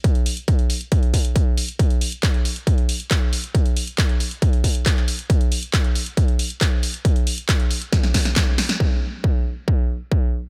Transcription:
\new DrumStaff \with { instrumentName = "Drums" } \drummode { \time 4/4 \tempo 4 = 137 <hh bd>16 hh16 hho16 hh16 <hh bd>16 hh16 hho16 hh16 <hh bd>16 hh16 <hho bd>16 hh16 <hh bd>8 hho16 hh16 | <hh bd>16 hh16 hho16 hh16 <hc hh bd>16 hh16 hho16 hh16 <hh bd>16 hh16 hho16 hh16 <hc hh bd>8 hho16 hh16 | <hh bd>16 hh16 hho16 hh16 <hc hh bd>16 hh16 hho16 hh16 <hh bd>16 hh16 <hho bd>16 hh16 <hc hh bd>16 hc16 hho16 hh16 | <hh bd>16 hh16 hho16 hh16 <hc hh bd>16 hh16 hho16 hh16 <hh bd>16 hh16 hho16 hh16 <hc hh bd>8 hho16 hh16 |
<hh bd>16 hh16 hho16 hh16 <hc hh bd>16 hh16 hho16 hh16 <hh bd sn>16 <hh sn>16 <hho bd sn>16 <hh sn>16 <hc hh bd sn>8 <hho sn>16 <hh sn>16 | <cymc bd>4 bd4 bd4 bd4 | }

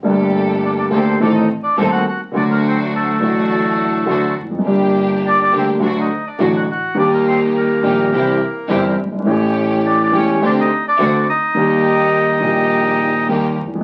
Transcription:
<<
  \new Staff \with { instrumentName = "Bandoneon" } { \time 4/4 \key d \phrygian \tempo 4 = 104 r4 <d' d''>16 <d' d''>16 <c' c''>8 <d' d''>16 <ees' ees''>8 <d' d''>8 <fis' fis''>16 <fis' fis''>8 | <d' d''>16 <bes bes'>16 <c' c''>8 <a a'>2~ <a a'>8 r8 | r4 <d' d''>16 <d' d''>16 <c' c''>8 <d' d''>16 <ees' ees''>8 <d' d''>8 <fis' fis''>16 <fis' fis''>8 | <d' d''>16 <bes bes'>16 <c' c''>8 <bes bes'>2~ <bes bes'>8 r8 |
r4 <d' d''>16 <d' d''>16 <cis' cis''>8 <d' d''>16 <ees' ees''>8 <d' d''>8. <ees' ees''>8~ | <ees' ees''>2. r4 | }
  \new Staff \with { instrumentName = "String section" } { \time 4/4 \key d \phrygian <g' a'>4. <bes g' a'>8 <c' ees' a'>8 r8 <c' ees' a'>8 r8 | <a d' fis'>4. <a d' fis'>4. <a d' fis'>8 r8 | <bes d' g'>4. <bes d' g'>8 <a d' fis'>8 r8 <a d' fis'>8 r8 | <bes ees' g'>4. <bes ees' g'>8 <c' e' g'>8 r8 <c' e' g'>8 r8 |
<a cis' g'>4. <a cis' g'>8 <c' d' g'>8 r8 <c' d' fis'>8 r8 | <bes ees' g'>4. <bes ees' g'>4. <bes ees' g'>8 r8 | }
  \new Staff \with { instrumentName = "Grand piano" } { \clef bass \time 4/4 \key d \phrygian <g,, g, d a bes g'>4. <d, d a bes g'>8 <a,, a, ees a c' a'>8 r8 <ees,, ees, ees a c' a'>8 r8 | <d, d fis a fis'>4. <a,, a, d fis a fis'>4. <d, d fis a fis'>8 r32 e,32 f,32 fis,32 | <g,, g, d g bes g'>4. <d, d g bes g'>8 <d, d fis a fis'>8 r8 <a,, a, d fis a fis'>8 r8 | <ees, ees g bes g'>4. <bes,, bes, ees g bes g'>8 <c, c e g c' g'>8 r8 <g,, g, e g c' g'>8 r32 fis,,32 g,,32 aes,,32 |
<a,, a, e a cis' g'>4. <e,, e, e a cis' g'>8 <d, d a c' g'>8 r8 <d, d a c' fis'>8 r8 | <ees, ees g bes g'>4. <bes,, bes, ees g bes g'>4. <ees, ees g bes g'>8 r32 e,32 f,32 r32 | }
  \new Staff \with { instrumentName = "Double bass" } { \clef bass \time 4/4 \key d \phrygian g,,4. d,8 a,,8 r8 ees,8 r8 | d,4. a,,4. d,8 f,,8 | g,,4. d,8 d,8 r8 a,,8 r8 | ees,4. bes,,8 c,8 r8 g,,8 g,,8 |
a,,4. e,,8 d,8 r8 d,8 r8 | ees,4. bes,,4. ees,8 f,,8 | }
>>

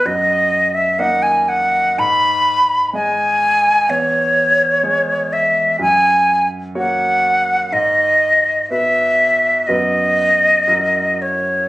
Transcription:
<<
  \new Staff \with { instrumentName = "Flute" } { \time 4/4 \key gis \minor \tempo 4 = 62 dis''8. e''16 fis''16 gis''16 fis''8 b''4 gis''4 | cis''4. e''8 gis''8. r16 fis''4 | dis''4 e''4 dis''4. cis''8 | }
  \new Staff \with { instrumentName = "Grand piano" } { \time 4/4 \key gis \minor fis,4 <ais dis' dis''>4 gis,4 <gis gis' dis''>4 | e,4 <gis gis' cis''>4 fis,4 <ais fis' cis''>4 | gis,4 <b fis' b'>4 <fis, b fis' b'>4 <fis, e' fis' ais'>4 | }
>>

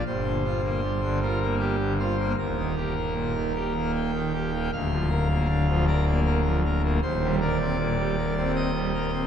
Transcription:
<<
  \new Staff \with { instrumentName = "Pipe organ" } { \time 3/4 \key bes \major \tempo 4 = 78 c''4. bes'8 g'8 c''8 | bes'2 g''4 | f''4. d''8 bes'8 r8 | c''8 d''4. ees''4 | }
  \new Staff \with { instrumentName = "Pipe organ" } { \clef bass \time 3/4 \key bes \major << { g,16 d16 f'16 bes16 g16 d16 f'16 bes8 d16 f'16 bes16 | ees,16 ees16 g'16 bes16 bes,16 ees16 g'16 bes8 ees16 g'16 bes16 | d,16 f16 bes'16 bes16 d16 f16 bes'16 bes8 f16 bes'16 bes16 | ees,16 g16 bes'16 c'16 bes,16 g16 bes'16 c'8 g16 bes'16 c'16 | } \\ { g,,2. | ees,,2. | d,,2. | ees,,2. | } >> }
>>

